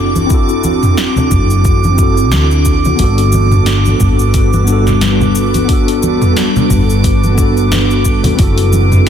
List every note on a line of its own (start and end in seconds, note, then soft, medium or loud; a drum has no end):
0.00 1.07 F#1 medium
0.00 0.25 C4 medium
0.00 2.96 C4 medium
0.00 8.35 D4 medium
0.00 0.26 E4 medium
0.00 0.27 F#4 medium
0.00 8.35 F#4 medium
0.00 0.29 A4 medium
0.00 9.09 D6 medium
0.16 high conga medium
0.16 cabasa soft
0.26 1.93 C4 medium
0.26 1.95 E4 medium
0.26 cabasa soft
0.30 1.96 F#4 medium
0.30 1.97 A4 medium
0.30 kick loud
0.49 cabasa soft
0.64 high conga medium
0.64 cabasa medium
0.83 mid tom medium
0.83 cabasa soft
0.97 snare medium
0.97 cabasa soft
1.16 high conga medium
1.16 low conga medium
1.16 cabasa soft
1.31 2.33 F#1 medium
1.31 kick medium
1.31 mid tom medium
1.31 cabasa medium
1.50 cabasa soft
1.65 kick loud
1.65 cabasa soft
1.84 high conga medium
1.84 cabasa soft
1.95 2.94 C4 medium
1.95 2.96 E4 medium
1.95 kick loud
1.95 cabasa medium
2.00 2.97 F#4 medium
2.00 2.98 A4 medium
2.17 cabasa soft
2.32 2.92 D2 medium
2.32 snare loud
2.32 high conga medium
2.32 cabasa soft
2.51 cabasa soft
2.65 kick medium
2.65 cabasa medium
2.85 high conga medium
2.85 low conga medium
2.85 cabasa soft
2.96 3.93 G1 medium
2.96 8.35 G3 medium
2.96 4.63 B3 medium
2.96 4.64 D4 medium
2.96 8.35 A4 medium
2.96 8.35 B4 medium
2.96 kick loud
2.96 open hi-hat medium
2.96 cabasa soft
3.01 4.66 F#4 medium
3.01 4.67 A4 medium
3.18 open hi-hat soft
3.18 cabasa soft
3.32 high conga medium
3.32 cabasa medium
3.52 mid tom medium
3.52 cabasa soft
3.66 snare medium
3.66 open hi-hat medium
3.66 cabasa soft
3.86 high conga medium
3.86 cabasa soft
4.00 6.46 G1 medium
4.00 kick medium
4.00 mid tom medium
4.00 cabasa medium
4.19 cabasa soft
4.34 kick loud
4.34 open hi-hat medium
4.34 cabasa soft
4.53 high conga medium
4.53 cabasa soft
4.64 5.64 B3 medium
4.64 5.65 D4 medium
4.64 cabasa medium
4.70 5.67 F#4 medium
4.70 5.68 A4 medium
4.87 snare soft
4.87 low conga medium
4.87 cabasa soft
5.01 snare medium
5.01 open hi-hat medium
5.01 high conga medium
5.01 cabasa soft
5.20 low conga medium
5.20 cabasa soft
5.35 cabasa medium
5.54 open hi-hat soft
5.54 high conga medium
5.54 cabasa soft
5.65 7.32 B3 medium
5.65 7.34 D4 medium
5.65 open hi-hat medium
5.69 7.35 F#4 medium
5.69 kick loud
5.69 cabasa soft
5.73 7.36 A4 medium
5.88 open hi-hat soft
5.88 cabasa soft
6.03 high conga medium
6.03 cabasa medium
6.22 mid tom medium
6.22 cabasa soft
6.37 snare medium
6.37 open hi-hat medium
6.37 cabasa soft
6.56 high conga medium
6.56 low conga medium
6.56 cabasa soft
6.70 8.31 G1 medium
6.70 kick medium
6.70 mid tom medium
6.70 cabasa medium
6.90 cabasa soft
7.04 kick loud
7.04 open hi-hat medium
7.04 cabasa soft
7.23 high conga medium
7.23 cabasa soft
7.34 8.34 B3 medium
7.34 8.35 D4 medium
7.34 kick loud
7.34 cabasa medium
7.40 8.37 F#4 medium
7.40 8.38 A4 medium
7.57 cabasa soft
7.72 snare medium
7.72 open hi-hat medium
7.72 high conga medium
7.72 cabasa soft
7.91 cabasa soft
8.05 kick medium
8.05 cabasa medium
8.24 open hi-hat soft
8.24 high conga medium
8.24 low conga medium
8.24 cabasa soft
8.35 9.09 F#1 medium
8.35 9.09 C4 medium
8.35 9.09 D4 medium
8.35 9.09 E4 medium
8.35 9.09 F#4 medium
8.35 kick loud
8.35 open hi-hat medium
8.35 cabasa soft
8.39 9.09 C4 medium
8.39 9.09 F#4 medium
8.39 9.09 A4 medium
8.58 open hi-hat soft
8.58 cabasa soft
8.73 high conga medium
8.73 cabasa medium
8.92 mid tom medium
8.92 cabasa soft